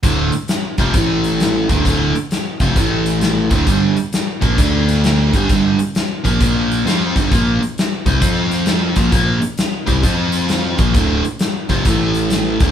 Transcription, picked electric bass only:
X:1
M:4/4
L:1/8
Q:"Swing" 1/4=132
K:Dm
V:1 name="Picked electric bass" clef=bass
D,,, z2 F,,, A,,,3 D,,, | D,,, z2 F,,, A,,,3 D,,, | G,,, z2 B,,, D,,3 G,,, | G,,, z2 B,,, B,,,2 F,, G,,, |
B,,, z2 C,, F,,3 B,,, | B,,, z2 C,, F,,3 B,,, | D,,, z2 F,,, A,,,3 D,,, |]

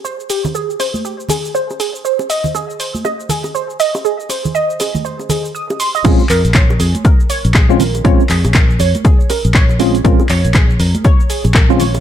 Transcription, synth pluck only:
X:1
M:4/4
L:1/16
Q:"Swing 16ths" 1/4=120
K:Bbdor
V:1 name="Synth pluck"
c z G z A z c z G z A z c z A z | c z e z A z c z e z A z c z e z | A z c z e z A z c z A z e' z c' e | A z B z d z A z B z d z A z B z |
d z A z B z d z A z B z d z A z | B z d z A z B z d z A z B z d z |]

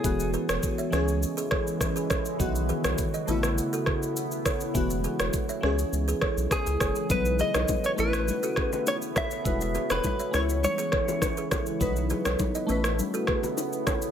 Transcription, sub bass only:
X:1
M:4/4
L:1/16
Q:1/4=102
K:C#m
V:1 name="Sub bass" clef=bass
E,,,3 E,,, z2 C,,3 z6 z | B,,,3 B,,, z2 A,,,3 z6 z | E,,,3 E,,, z2 C,,2 C,,2 z B,,, z C,, F,,, z | B,,,3 B,,, z2 A,,,3 z6 z |
E,,,3 E,,, z2 C,,3 z6 z | B,,,3 B,,, z2 A,,,3 z6 z |]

